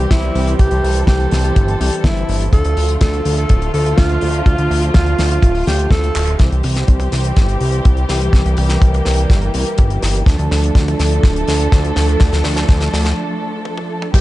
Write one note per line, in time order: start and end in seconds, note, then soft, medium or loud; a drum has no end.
0.00 2.49 E3 medium
0.00 2.49 G3 medium
0.00 2.49 C4 medium
0.00 0.57 G4 medium
0.11 0.31 C2 medium
0.11 0.54 E4 medium
0.11 kick loud
0.11 snare loud
0.11 closed hi-hat medium
0.22 closed hi-hat medium
0.35 0.55 C2 medium
0.35 open hi-hat medium
0.47 closed hi-hat medium
0.59 0.69 C2 medium
0.59 1.02 G4 loud
0.59 2.51 A4 medium
0.59 kick loud
0.59 closed hi-hat loud
0.71 0.81 C2 loud
0.71 closed hi-hat soft
0.84 1.04 C2 medium
0.84 open hi-hat loud
0.96 closed hi-hat soft
1.07 1.27 C2 medium
1.07 1.40 G4 medium
1.07 kick loud
1.07 snare loud
1.07 closed hi-hat medium
1.20 closed hi-hat soft
1.31 1.52 C2 loud
1.31 snare medium
1.31 open hi-hat loud
1.44 1.76 G4 medium
1.44 closed hi-hat medium
1.56 1.76 G1 loud
1.56 kick loud
1.56 closed hi-hat loud
1.68 closed hi-hat medium
1.80 1.90 C2 loud
1.80 2.02 G4 medium
1.80 open hi-hat loud
1.93 closed hi-hat medium
2.04 2.24 G1 medium
2.04 2.47 E4 loud
2.04 kick loud
2.04 snare loud
2.04 closed hi-hat medium
2.17 closed hi-hat medium
2.29 2.49 G1 medium
2.29 open hi-hat loud
2.40 closed hi-hat soft
2.53 2.63 D2 loud
2.53 6.36 D3 medium
2.53 6.36 F3 medium
2.53 6.36 A3 medium
2.53 6.36 F4 medium
2.53 2.96 A4 loud
2.53 kick loud
2.53 closed hi-hat loud
2.65 2.75 D2 medium
2.65 closed hi-hat medium
2.77 2.97 D2 medium
2.77 open hi-hat loud
2.89 closed hi-hat medium
3.01 3.21 D2 medium
3.01 3.33 A4 medium
3.01 kick loud
3.01 snare loud
3.01 closed hi-hat loud
3.13 closed hi-hat medium
3.25 3.46 D2 medium
3.25 open hi-hat loud
3.37 3.70 A4 medium
3.37 closed hi-hat medium
3.49 3.70 D1 medium
3.49 kick loud
3.49 closed hi-hat loud
3.62 closed hi-hat medium
3.74 3.94 D2 medium
3.74 3.95 A4 medium
3.74 open hi-hat loud
3.86 closed hi-hat medium
3.98 4.18 D2 medium
3.98 4.41 F4 loud
3.98 kick loud
3.98 snare loud
3.98 closed hi-hat loud
4.09 closed hi-hat medium
4.21 4.42 D2 medium
4.21 open hi-hat loud
4.34 closed hi-hat medium
4.46 4.56 D2 medium
4.46 4.82 F4 loud
4.46 kick loud
4.46 closed hi-hat loud
4.58 4.69 D2 loud
4.58 closed hi-hat medium
4.71 4.91 D2 medium
4.71 open hi-hat loud
4.83 closed hi-hat medium
4.94 5.15 D2 medium
4.94 5.27 F4 loud
4.94 kick loud
4.94 snare loud
4.94 closed hi-hat loud
5.06 closed hi-hat medium
5.19 5.39 D2 loud
5.19 snare medium
5.19 open hi-hat loud
5.31 5.63 F4 medium
5.31 closed hi-hat medium
5.43 5.63 D1 loud
5.43 kick loud
5.43 closed hi-hat loud
5.55 open hi-hat medium
5.67 5.87 D2 medium
5.67 5.89 G4 medium
5.67 snare medium
5.67 open hi-hat loud
5.79 closed hi-hat medium
5.91 6.11 D2 medium
5.91 6.34 A4 medium
5.91 kick loud
5.91 snare loud
5.91 closed hi-hat loud
6.04 closed hi-hat medium
6.15 6.36 D1 medium
6.15 clap medium
6.15 open hi-hat loud
6.27 closed hi-hat medium
6.39 6.50 C2 loud
6.39 10.23 E3 medium
6.39 10.23 G3 medium
6.39 8.32 C4 medium
6.39 10.23 G4 medium
6.39 kick loud
6.39 snare soft
6.39 closed hi-hat loud
6.52 6.62 C2 medium
6.52 closed hi-hat medium
6.63 6.84 C2 medium
6.63 open hi-hat loud
6.63 high tom medium
6.76 snare soft
6.76 closed hi-hat medium
6.88 7.08 C2 medium
6.88 kick loud
6.88 closed hi-hat loud
7.00 closed hi-hat medium
7.00 high tom medium
7.12 7.33 C2 medium
7.12 snare soft
7.12 open hi-hat loud
7.24 closed hi-hat medium
7.36 7.57 G1 medium
7.36 kick loud
7.36 snare medium
7.36 closed hi-hat medium
7.49 closed hi-hat medium
7.61 7.81 C2 medium
7.61 open hi-hat loud
7.72 closed hi-hat medium
7.85 8.05 C2 medium
7.85 kick loud
7.85 closed hi-hat medium
7.97 closed hi-hat medium
8.09 8.29 C2 medium
8.09 snare medium
8.09 open hi-hat loud
8.21 closed hi-hat medium
8.33 8.43 C2 medium
8.33 10.25 A#3 medium
8.33 kick loud
8.33 snare medium
8.33 closed hi-hat medium
8.46 8.56 C2 loud
8.46 closed hi-hat medium
8.57 8.78 C2 medium
8.57 open hi-hat medium
8.57 high tom medium
8.69 snare medium
8.69 closed hi-hat medium
8.82 9.02 C2 medium
8.82 kick loud
8.82 closed hi-hat loud
8.94 closed hi-hat medium
8.94 high tom medium
9.05 9.26 C2 loud
9.05 snare medium
9.05 open hi-hat loud
9.18 closed hi-hat medium
9.30 9.50 G1 loud
9.30 kick loud
9.30 snare medium
9.30 closed hi-hat medium
9.42 closed hi-hat medium
9.54 9.64 C2 loud
9.54 open hi-hat loud
9.66 closed hi-hat medium
9.78 9.99 G1 medium
9.78 kick loud
9.78 closed hi-hat medium
9.90 closed hi-hat medium
10.02 10.23 G1 medium
10.02 snare medium
10.02 open hi-hat loud
10.15 closed hi-hat medium
10.26 10.37 D2 loud
10.26 14.10 F3 medium
10.26 14.10 A3 medium
10.26 14.10 D4 medium
10.26 14.10 A4 medium
10.26 kick loud
10.26 snare medium
10.26 closed hi-hat loud
10.39 10.49 D2 medium
10.39 closed hi-hat medium
10.51 10.71 D2 medium
10.51 snare medium
10.51 open hi-hat loud
10.51 high tom medium
10.64 closed hi-hat medium
10.75 10.95 D2 medium
10.75 kick loud
10.75 snare medium
10.75 closed hi-hat medium
10.88 closed hi-hat medium
10.88 high tom medium
10.99 11.20 D2 medium
10.99 snare medium
10.99 open hi-hat loud
11.12 closed hi-hat medium
11.23 11.44 D1 medium
11.23 kick loud
11.23 snare medium
11.23 closed hi-hat medium
11.36 closed hi-hat medium
11.48 11.68 D2 medium
11.48 snare medium
11.48 open hi-hat loud
11.61 closed hi-hat soft
11.72 11.92 D2 medium
11.72 kick loud
11.72 snare medium
11.72 closed hi-hat loud
11.85 closed hi-hat medium
11.96 12.16 D2 medium
11.96 snare medium
11.96 open hi-hat loud
12.09 closed hi-hat medium
12.20 12.31 D2 medium
12.20 kick loud
12.20 snare medium
12.20 closed hi-hat medium
12.33 12.43 D2 loud
12.33 snare medium
12.33 closed hi-hat medium
12.44 12.65 D2 medium
12.44 snare loud
12.44 open hi-hat loud
12.44 high tom medium
12.56 snare medium
12.56 closed hi-hat medium
12.56 high tom medium
12.69 12.89 D2 medium
12.69 kick loud
12.69 snare loud
12.69 closed hi-hat medium
12.80 snare medium
12.80 closed hi-hat medium
12.80 high tom medium
12.93 13.13 D2 loud
12.93 snare medium
12.93 open hi-hat loud
13.05 snare medium
13.05 closed hi-hat medium
13.65 high tom medium
13.78 high tom medium
14.02 mid tom medium
14.14 14.21 C2 loud
14.14 14.21 E3 medium
14.14 14.21 G3 medium
14.14 14.21 C4 medium
14.14 14.21 G4 medium
14.14 14.21 G4 loud
14.14 kick loud
14.14 closed hi-hat medium
14.14 crash loud
14.14 downlifter medium